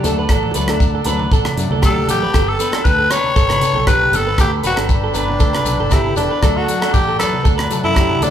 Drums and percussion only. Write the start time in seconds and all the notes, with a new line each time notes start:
0.04 closed hi-hat, low conga, shekere
0.29 kick, cross-stick, low agogo, shekere
0.43 low conga
0.54 closed hi-hat, shekere
0.68 cross-stick, low agogo
0.80 kick, shekere
1.04 closed hi-hat, low conga, low agogo, shekere
1.19 high conga
1.32 kick, shekere
1.45 cross-stick, high conga, low agogo
1.57 closed hi-hat, high conga, shekere
1.71 high conga
1.82 kick, cross-stick, low agogo, shekere
1.97 high conga
2.08 closed hi-hat, low conga, shekere
2.22 low conga
2.34 kick, cross-stick, low agogo, shekere
2.60 closed hi-hat, shekere
2.72 cross-stick, low agogo
2.85 kick, shekere
3.11 cross-stick, closed hi-hat, low agogo, shekere
3.24 high conga
3.36 kick, shekere
3.49 cross-stick, high conga, low agogo
3.61 closed hi-hat, high conga, shekere
3.75 high conga
3.87 kick, cross-stick, low agogo, shekere
4.01 high conga
4.13 closed hi-hat, low conga, shekere
4.38 kick, cross-stick, low agogo, shekere
4.63 closed hi-hat, shekere
4.76 cross-stick, low agogo
4.89 kick, shekere
5.14 closed hi-hat, low conga, low agogo, shekere
5.28 high conga
5.40 kick, shekere
5.53 cross-stick, high conga, low agogo
5.65 closed hi-hat, high conga, shekere
5.80 high conga
5.90 kick, cross-stick, low agogo, shekere
6.06 high conga
6.16 closed hi-hat, low conga, shekere
6.43 kick, cross-stick, low agogo, shekere
6.68 closed hi-hat, shekere
6.82 cross-stick, low agogo
6.94 kick, shekere
7.19 cross-stick, closed hi-hat, low conga, low agogo, shekere
7.33 high conga
7.45 kick, shekere
7.58 cross-stick, low agogo
7.70 closed hi-hat, high conga, shekere
7.84 high conga
7.94 kick, cross-stick, low agogo, shekere
8.11 high conga
8.22 closed hi-hat, low conga, shekere